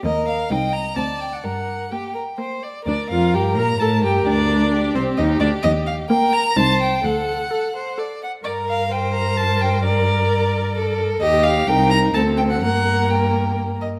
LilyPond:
<<
  \new Staff \with { instrumentName = "Violin" } { \time 3/4 \key g \minor \tempo 4 = 129 ees''8 f''8 g''8 bes''8 a''8 g''16 fis''16 | fis''4 g''4 r4 | d''8 f''8 g''8 bes''8 a''8 g''8 | d''4. c''8 ees''8 d''8 |
ees''8 f''8 g''8 bes''8 a''8 g''8 | fis''2 r4 | d''8 f''8 g''8 bes''8 a''8 g''8 | d''2~ d''8 r8 |
ees''8 f''8 g''8 bes''8 a''8 g''16 fis''16 | fis''4 g''4 r8 ees''8 | }
  \new Staff \with { instrumentName = "Violin" } { \time 3/4 \key g \minor bes'4 ees''4 d''4 | bes'4 g'8 bes'8 c''8 d''8 | bes'2.~ | bes'4 g'2~ |
g'4 bes'4 c''4 | a'4 a'8 c''8 d''8 fis''8 | bes'4 c''2 | bes'2 a'4 |
g'4 bes'4 a'4 | bes'2~ bes'8 r8 | }
  \new Staff \with { instrumentName = "Viola" } { \time 3/4 \key g \minor bes4 ees'4 c'4 | r4 bes4 bes4 | d'8 f'8 g'8 bes'8 a'8 g'8 | d'4. c'8 ees'8 d'8 |
r4 bes4 ees'4 | r4 a'4 a'4 | bes'2.~ | bes'2. |
g'4 ees'4 c'4 | bes2~ bes8 r8 | }
  \new Staff \with { instrumentName = "Cello" } { \clef bass \time 3/4 \key g \minor ees,4 c,4 d,4 | g,4 r2 | d,8 f,8 g,8 bes,8 a,8 g,8 | d,4. c,8 ees,8 d,8 |
ees,4 r4 c,4 | d,4 r2 | g,2.~ | g,2. |
ees,4 c,4 d,4 | g,2~ g,8 r8 | }
>>